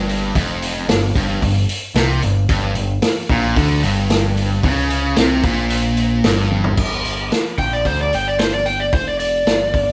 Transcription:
Already playing: G1 G2
0.09 open hi-hat
0.35 F1 F2, kick, open hi-hat
0.62 open hi-hat
0.88 G1 G2, snare, open hi-hat
1.15 G1 G2, kick, open hi-hat
1.42 G1 G2, kick, open hi-hat
1.69 open hi-hat
1.94 C2 C3, snare, open hi-hat
2.22 G1 G2, open hi-hat
2.49 G1 G2, kick, open hi-hat
2.75 G1 G2, open hi-hat
3.02 snare, open hi-hat
3.29 A#1 A#2, kick, open hi-hat
3.56 D2 D3, kick, open hi-hat
3.83 G1 G2, open hi-hat
4.10 snare, open hi-hat
4.37 open hi-hat
4.63 C#2 C#3, kick, open hi-hat
4.90 open hi-hat
5.16 C2 C3, snare, open hi-hat
5.43 A#1 A#2, kick, open hi-hat
5.70 open hi-hat
5.97 open hi-hat
6.24 G1 G2, snare, open hi-hat
6.51 high tom
6.64 floor tom
6.77 G1, kick, crash
7.05 G1, open hi-hat
7.32 snare, open hi-hat
7.58 A#1 G5, kick, open hi-hat
7.73 D5
7.85 D2 C5, kick, open hi-hat
8.01 D5
8.13 G1 G5, open hi-hat
8.28 D5
8.39 C5, snare, open hi-hat
8.53 D5
8.66 G5, open hi-hat
8.80 D5
8.93 F1 C5, kick, open hi-hat
9.08 D5
9.19 D5, open hi-hat
9.46 G1, snare, open hi-hat
9.74 G1, kick, open hi-hat

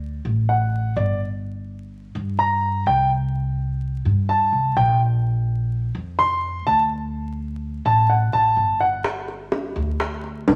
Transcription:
Already playing: D2
0.25 A1
0.49 F#5
0.96 G1 D5
2.15 G2
2.39 A#5
2.86 C2 G5
4.05 G2
4.29 A5
4.52 C2
4.76 A#1 G5
5.95 F2
6.19 C6
6.66 D2 A5
7.85 A1 A5
8.09 F#5
8.33 A1 A5
8.57 G1
8.80 F#5
9.04 high bongo
9.28 high bongo
9.52 high bongo
9.76 D2, high bongo
10.00 high bongo
10.24 high bongo
10.47 C2, high bongo, low bongo

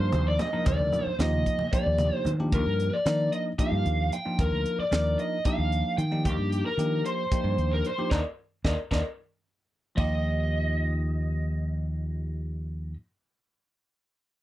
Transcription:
Already playing: F3 A#3 D4 D#4 A#4 C5
0.00 G2
0.12 D#2, closed hi-hat, high conga, low conga
0.28 D5
0.39 D#5, snare, closed hi-hat, low conga
0.53 F3 A#3 D4 D#4 A#4
0.66 D#2 D5, kick, closed hi-hat, muted conga, low conga
0.79 D2, high conga
0.93 closed hi-hat, low conga
1.06 muted fingered electric bass stroke, low conga
1.19 D#2 F3 A#3 D#4 F4 G4 D#5, snare, closed hi-hat
1.33 high conga
1.46 kick, closed hi-hat, low conga
1.59 muted conga, low conga
1.72 F3 A#3 D4 D#4 G4 D5, muted fingered electric bass stroke, kick, closed hi-hat
1.86 D#2
1.98 closed hi-hat, high conga
2.16 C5
2.25 D#3, closed hi-hat, low conga
2.38 F3 A#3 D4 D#4 G4, low conga
2.52 D#2 A#4, kick, closed hi-hat
2.66 G2
2.80 closed hi-hat
2.93 D5
3.05 D#3 F3 A#3 D4 D#4 A#4, snare, closed hi-hat
3.33 D#5, closed hi-hat
3.58 F3 A#3 D4 D#4 G4 F5, kick, closed hi-hat
3.72 G2
3.86 D#2, closed hi-hat
4.12 G5, closed hi-hat
4.25 F3 A#3 D4 D#4 F4
4.39 D#2 A#4, kick, closed hi-hat
4.52 D2
4.66 closed hi-hat
4.78 D5, muted fingered electric bass stroke
4.91 D#2 F3 A#3 D4 D#4 A#4, snare, closed hi-hat
5.19 D#5, closed hi-hat
5.45 F3 A#3 D4 D#4 G4 F5, muted fingered electric bass stroke, kick, closed hi-hat
5.58 D#2
5.72 closed hi-hat
5.98 D#3 G5, closed hi-hat
6.11 F3 A#3 D4 D#4 G4
6.25 D#2 G4, kick, closed hi-hat
6.38 G2
6.52 closed hi-hat
6.66 A#4
6.77 D#3 F3 A#3 D4 D#4 G4, closed hi-hat
7.05 C5, closed hi-hat
7.32 F3 A#3 D4 D#4 G4, kick, closed hi-hat
7.44 G2
7.58 D#2, closed hi-hat
7.73 A#4
7.85 C5, closed hi-hat
7.98 F3 A#3 D4 D#4 G4
8.11 D#2 A#3 D4 D#4 A#4 D5 D#5, kick, snare
8.64 D#2 A#3 D4 D#4 A#4 D5 D#5, kick, snare
8.91 D#2 A#3 D4 D#4 A#4 D5 D#5, kick, snare
9.95 D#2 F3 A#3 D#4 F4 D#5, kick, crash
9.99 G4

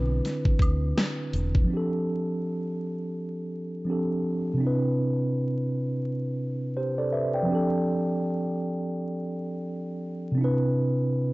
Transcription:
Already playing: B1 D3 C4 D4 E4 B4
0.25 snare, closed hi-hat, shaker
0.45 muted fingered electric bass stroke, kick
0.59 D2, kick, closed hi-hat, high woodblock, shaker
0.98 snare, closed hi-hat, shaker
1.33 E1, closed hi-hat, shaker
1.55 kick
1.64 F3 C4
1.70 D4 G4
1.77 A4
3.85 F3 C4 D4
3.90 G4 A4
4.54 C3 C4
4.60 D4 E4
4.67 B4
6.77 G4 C5
6.98 A4 D5
7.13 B4 E5
7.34 D5 G5
7.43 F3 C4
7.49 D4 G4
7.55 A4
10.32 C3 C4
10.38 D4 E4
10.44 B4

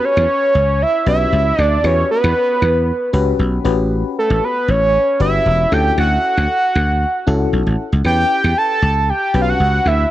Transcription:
Already playing: C#4 F#4 G4 B4
0.05 C#5
0.17 E2
0.55 C#2
0.82 E5
1.06 B1 C#4 F#4 G4 B4 E5
1.32 C#2
1.58 D2 D5
1.84 E2 C#4 F#4 G4 B4 C#5
2.11 B4
2.24 E2
2.62 E2
3.13 C#2 C#4 F#4 G4 B4
3.39 B1
3.65 A1 C#4 F#4 G4 B4
4.19 A4
4.30 A1
4.44 B4
4.68 A1 C#5
5.20 G1 C#4 F#4 G4 B4 E5
5.46 E1
5.71 D2 C#4 E4 F#4 A4 G5
5.98 D2 F#5
6.37 D2
6.75 D2
7.27 C#2 C#4 E4 F#4 A4
7.53 B1
7.67 A1
7.92 C#2
8.04 E2 C#4 E4 G4 B4 G5
8.44 E2
8.58 A5
8.82 C#2
9.03 A5
9.10 G5
9.34 B1 C#4 F#4 G4 B4
9.42 F5
9.49 F#5
9.60 C#2
9.85 D2 E5

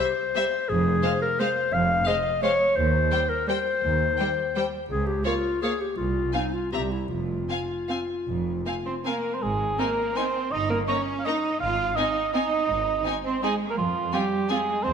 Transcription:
Already playing: C5
0.35 G3 C5 E5
0.69 F1 F2 G#4
1.03 G#3 C5 F5
1.22 A#4
1.39 G#3 C5 F5
1.73 F1 F2 F5
2.07 G#3 C5 D#5 F5
2.42 G#3 C5 C#5 F5
2.76 D#2 C5
3.12 G3 C5 G5
3.30 A#4
3.48 G3 C5 G5
3.83 D#2
4.19 G3 C5 G5
4.56 G3 C5 G5
4.90 C#2 G#4
5.07 G4
5.25 A#3 F4 C#5 F5
5.62 A#3 G#4 C#5 F5
5.81 G4
5.97 C2 F4
6.34 C4 D#4 F5 G#5
6.54 F4
6.72 C2 C4 G4 E5 A#5
6.91 E4
7.09 F1 F2 F4
7.48 C4 F5 G#5
7.89 C4 F5 G#5
8.27 F1 F2
8.66 C4 F5 G#5
8.86 C4 C5
9.05 A#3 C4 A#4 F5 G#5
9.34 C4 C5
9.42 G#1 G#3 G#4
9.79 A#3 C4 D#4 A#4 G#5
10.17 C4 D#4 C5 G#5
10.52 G1 D#4 D#5
10.70 A#3 A#4
10.88 A#3 C#4 D#4 C#5 A#5
11.19 F5
11.25 A#3 D#4 D#5 A#5
11.60 G#1 F4 F5
11.96 C4 D#4 D#5 G#5
12.34 C4 D#4 D#5 G#5
12.69 G#1
13.05 C4 D#4 G#5
13.24 C4 C5
13.43 G#3 C4 D#4 G#4 G#5
13.69 A#3 A#4
13.77 F2 F3 F4
14.13 G3 C4 F4 G4 G#5
14.50 G#3 C4 F4 G#4 G#5
14.84 E2 C4 C5

